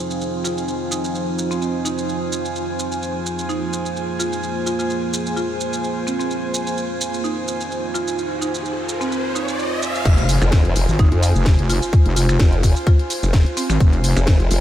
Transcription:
Already playing: ambient pad F3 C4 D#4, analog synth pad F4 C5 G#5
0.11 shaker
0.21 shaker
0.44 marimba F4, shaker
0.58 shaker
0.68 shaker
0.91 marimba D#4, shaker
1.04 shaker
1.15 shaker
1.39 shaker
1.51 marimba C4, shaker
1.62 marimba C4, shaker
1.85 marimba D#4, shaker
1.98 shaker
2.09 shaker
2.32 shaker
2.45 shaker
2.55 ambient pad A#3 G#4, shaker
2.79 shaker
2.92 shaker
3.03 shaker
3.26 shaker
3.39 shaker
3.49 marimba D#4, shaker
3.73 shaker
3.86 shaker
3.96 shaker
4.19 marimba F4, shaker
4.33 shaker
4.43 shaker
4.66 marimba F4, shaker
4.79 marimba F4, shaker
4.90 shaker
5.14 shaker
5.26 shaker
5.37 marimba F4, shaker
5.60 shaker
5.73 shaker
5.84 shaker
6.07 marimba C4, shaker
6.20 marimba C4, shaker
6.30 ambient pad D#4, riser, shaker
6.54 shaker
6.67 shaker
6.78 shaker
7.01 shaker
7.14 shaker
7.24 marimba D#4, shaker
7.48 shaker
7.61 shaker
7.71 shaker
7.94 marimba F4, shaker
8.08 shaker
8.18 shaker
8.41 marimba D#4, shaker
8.54 shaker
8.65 shaker
8.89 shaker
9.01 marimba C4, shaker
9.12 marimba C4, shaker
9.35 marimba D#4, shaker
9.48 shaker
9.59 shaker
9.82 shaker
9.95 shaker
10.05 wobble bass F1, kick, closed hi-hat, crash, impact, shaker
10.18 closed hi-hat
10.29 open hi-hat, shaker
10.42 wobble bass F1, finger snap, closed hi-hat, shaker
10.52 kick, snare, closed hi-hat, shaker
10.65 closed hi-hat
10.76 wobble bass F1, open hi-hat, shaker
10.88 wobble bass G#1, shaker
10.99 marimba D#4, kick, closed hi-hat, shaker
11.12 wobble bass F2, closed hi-hat
11.23 open hi-hat, shaker
11.35 wobble bass F1, shaker
11.46 kick, snare, closed hi-hat, shaker
11.59 wobble bass F1, closed hi-hat
11.70 marimba F4, open hi-hat, shaker
11.83 shaker
11.93 kick, closed hi-hat, shaker
12.06 wobble bass F1, closed hi-hat
12.16 marimba F4, open hi-hat, shaker
12.29 marimba F4, finger snap, closed hi-hat, shaker
12.39 wobble bass F1, kick, snare, closed hi-hat, shaker
12.53 closed hi-hat
12.63 kick, open hi-hat, shaker
12.76 shaker
12.87 marimba F4, kick, closed hi-hat, shaker
12.99 closed hi-hat
13.10 open hi-hat, shaker
13.23 wobble bass F1, shaker
13.33 kick, snare, closed hi-hat, shaker
13.46 closed hi-hat
13.57 marimba C4, open hi-hat, shaker
13.70 wobble bass G#1, marimba C4, finger snap, shaker
13.80 wobble bass F1, kick, closed hi-hat, shaker
13.93 closed hi-hat
14.04 open hi-hat, shaker
14.17 wobble bass F1, finger snap, shaker
14.27 kick, snare, closed hi-hat, shaker
14.40 closed hi-hat
14.51 wobble bass F1, open hi-hat, shaker

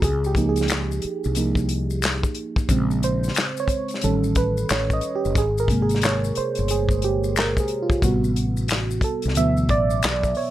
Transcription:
0.02 fretless electric bass C#2, fm electric piano G#4, kick, closed hi-hat, maracas
0.24 fm electric piano G4, maracas
0.35 fm electric piano F3 A#3 D#4, kick, closed hi-hat, maracas
0.49 fm electric piano G#4
0.56 closed hi-hat, maracas
0.61 snare
0.68 finger snap, snare, clap, closed hi-hat, maracas
0.92 maracas
1.02 muted fretless electric bass stroke, closed hi-hat
1.24 fretless electric bass C2, maracas
1.35 fm electric piano F3 A#3 D#4, closed hi-hat, maracas
1.55 kick, maracas
1.69 closed hi-hat
1.90 maracas
2.02 finger snap, snare, clap, closed hi-hat, maracas
2.23 kick, maracas
2.35 closed hi-hat
2.56 kick, maracas
2.69 fretless electric bass A#1, fm electric piano C#3 G#3 C4, kick, closed hi-hat, maracas
2.91 maracas
3.03 fm electric piano C5, closed hi-hat, maracas
3.24 maracas
3.28 snare
3.35 finger snap, snare, clap, closed hi-hat, maracas
3.57 fm electric piano C#5, maracas
3.68 kick, closed hi-hat, maracas
3.88 closed hi-hat, maracas
3.94 snare
4.01 fretless electric bass A1, fm electric piano D#3 G3 C#4 A4, closed hi-hat, maracas
4.24 maracas
4.35 fm electric piano B4, kick, closed hi-hat, maracas
4.57 maracas
4.69 fretless electric bass A1, fm electric piano C#5, finger snap, snare, clap, closed hi-hat, maracas
4.90 fm electric piano D#5, kick, maracas
5.01 closed hi-hat, maracas
5.16 fm electric piano G4
5.25 fretless electric bass F#1, maracas
5.35 fretless electric bass G#1, fm electric piano G#4, kick, closed hi-hat, maracas
5.58 fm electric piano A#4, maracas
5.68 fm electric piano C3 G#3 A#3, kick, closed hi-hat, maracas
5.82 fm electric piano G#4
5.89 closed hi-hat, maracas
5.95 snare
6.01 fm electric piano C#5, finger snap, snare, clap, closed hi-hat, maracas
6.24 maracas
6.35 fm electric piano C5, muted fretless electric bass stroke, closed hi-hat
6.55 fretless electric bass G1, closed hi-hat, maracas
6.68 fm electric piano G#4, closed hi-hat, maracas
6.89 kick, maracas
7.02 fm electric piano G4, closed hi-hat
7.24 maracas
7.36 fm electric piano A#4, finger snap, snare, clap, closed hi-hat, maracas
7.57 fm electric piano G#4, kick, maracas
7.68 closed hi-hat
7.82 fm electric piano F4
7.90 kick, maracas
8.02 fretless electric bass A1, fm electric piano C3 G3 B3 F#4, kick, closed hi-hat, maracas
8.24 maracas
8.36 closed hi-hat, maracas
8.57 maracas
8.68 finger snap, snare, clap, closed hi-hat, maracas
8.91 maracas
9.01 fm electric piano A4, muted fretless electric bass stroke, kick, closed hi-hat
9.22 fretless electric bass C2, closed hi-hat, maracas
9.28 snare
9.35 fretless electric bass D2, fm electric piano B2 E3 F#3 B3 E5, closed hi-hat, maracas
9.57 maracas
9.69 fretless electric bass A1, fm electric piano D5, kick, closed hi-hat
9.90 maracas
10.03 fretless electric bass B1, finger snap, snare, clap, closed hi-hat, maracas
10.23 kick, maracas
10.35 fm electric piano C#5, open hi-hat

